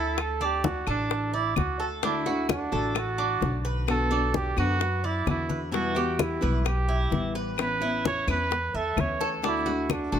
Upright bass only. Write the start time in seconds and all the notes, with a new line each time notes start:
Already playing: D2
0.87 A1
1.57 D2
2.73 A1
3.42 B1
4.57 F#2
5.27 E2
6.43 B1
7.12 A1
8.27 E2
8.74 E2
8.97 D2
10.13 A1